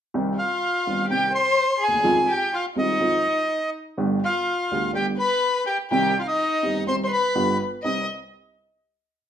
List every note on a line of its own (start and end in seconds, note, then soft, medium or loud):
0.14 0.34 C2 medium
0.14 0.34 C3 medium
0.14 0.34 D#3 medium
0.14 0.34 G3 soft
0.14 0.34 C4 soft
0.14 0.34 G4 medium
0.38 1.06 F4 medium
0.38 1.06 F5 medium
0.87 1.06 G1 soft
0.87 1.06 G2 soft
0.87 1.06 D#3 soft
0.87 1.06 G3 soft
0.87 1.06 C4 soft
0.87 1.06 G4 soft
1.08 1.30 C2 soft
1.08 1.30 C3 soft
1.08 1.30 D#3 soft
1.08 1.30 G3 soft
1.08 1.30 C4 soft
1.08 1.31 G4 medium
1.08 1.30 G4 soft
1.08 1.33 G5 medium
1.33 1.78 C5 medium
1.33 1.84 C6 medium
1.80 2.25 G#4 medium
1.80 2.32 G#5 medium
1.88 1.94 D2 soft
1.93 1.99 D#2 soft
1.99 2.05 E2 medium
2.04 2.25 F2 medium
2.04 2.25 D#3 medium
2.04 2.25 F3 medium
2.04 2.25 G#3 soft
2.04 2.25 C4 medium
2.04 2.25 F4 medium
2.29 2.51 G4 medium
2.29 2.55 G5 medium
2.54 2.65 F4 medium
2.54 2.66 F5 medium
2.76 2.97 C2 soft
2.76 2.97 C3 soft
2.76 2.97 D#3 soft
2.76 2.97 G#3 soft
2.76 2.97 C4 soft
2.76 3.70 D#4 medium
2.76 2.97 F4 soft
2.76 3.70 D#5 medium
3.00 3.21 F2 soft
3.00 3.21 D#3 soft
3.00 3.21 F3 soft
3.00 3.21 G#3 soft
3.00 3.21 C4 soft
3.00 3.21 F4 soft
3.97 4.18 G1 medium
3.97 4.18 G2 medium
3.97 4.18 D3 medium
3.97 4.18 G3 medium
3.97 4.18 B3 medium
3.97 4.18 G4 medium
4.24 4.91 F4 medium
4.24 4.92 F5 medium
4.72 4.91 D2 soft
4.72 4.91 D3 soft
4.72 4.91 G3 soft
4.72 4.91 B3 soft
4.72 4.91 G4 soft
4.93 5.14 G1 soft
4.93 5.14 G2 soft
4.93 5.14 D3 soft
4.93 5.14 G3 soft
4.93 5.14 B3 soft
4.93 5.14 G4 soft
4.93 5.06 G4 medium
4.93 5.06 G5 medium
5.19 5.63 B4 medium
5.19 5.64 B5 medium
5.67 5.77 G4 medium
5.67 5.77 G5 medium
5.90 6.11 C2 medium
5.90 6.11 C3 medium
5.90 6.11 D#3 medium
5.90 6.11 G3 medium
5.90 6.11 C4 soft
5.90 6.17 G4 medium
5.90 6.11 G4 medium
5.90 6.18 G5 medium
6.19 6.26 F4 soft
6.19 6.27 F5 soft
6.27 6.83 D#4 medium
6.27 6.84 D#5 medium
6.63 6.83 G1 soft
6.63 6.83 G2 soft
6.63 6.83 D#3 soft
6.63 6.83 G3 soft
6.63 6.83 C4 soft
6.63 6.84 G4 soft
6.87 7.08 C2 soft
6.87 7.08 C3 soft
6.87 7.08 D#3 soft
6.87 7.08 G3 soft
6.87 7.08 C4 soft
6.87 7.08 G4 soft
6.87 6.96 C5 medium
6.87 6.95 C6 medium
7.04 7.10 C5 soft
7.04 7.12 C6 medium
7.10 7.56 B4 medium
7.10 7.58 B5 medium
7.35 7.56 G1 medium
7.35 7.56 G2 medium
7.35 7.56 D3 medium
7.35 7.56 G3 soft
7.35 7.56 B3 soft
7.35 7.56 F4 medium
7.83 8.05 C2 soft
7.83 8.04 G3 soft
7.83 8.05 C4 soft
7.83 8.04 D#4 soft
7.83 8.06 D#5 medium
7.83 8.07 D#6 medium